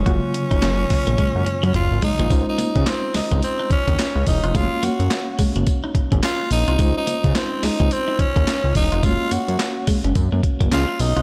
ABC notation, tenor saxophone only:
X:1
M:4/4
L:1/16
Q:"Swing 16ths" 1/4=107
K:Db
V:1 name="Tenor saxophone"
D12 F2 E2- | E E3 C2 E2 C2 D4 E2 | F2 G4 z6 F2 E2- | E E3 C2 E2 C2 D4 E2 |
F2 G4 z6 F2 E2 |]